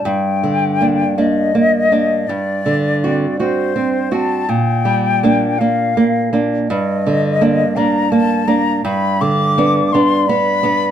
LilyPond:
<<
  \new Staff \with { instrumentName = "Flute" } { \time 6/8 \key g \minor \tempo 4. = 55 g''4. ees''4. | d''4. c''4 a''8 | g''4. f''4 r8 | ees''4. bes''8 a''8 bes''8 |
\key g \major b''8 d'''4 c'''8 b''4 | }
  \new Staff \with { instrumentName = "Nylon-string guitar" } { \time 6/8 \key g \minor g,8 d8 <bes d'>8 <bes d'>8 bes8 <bes d'>8 | g,8 d8 <c' fis'>8 <c' fis'>8 c'8 <c' fis'>8 | bes,8 g8 <bes d'>8 <bes d'>8 bes8 <bes d'>8 | g,8 d8 <bes d'>8 <bes d'>8 bes8 <bes d'>8 |
\key g \major g,8 d8 <b d'>8 <b d'>8 b8 <b d'>8 | }
>>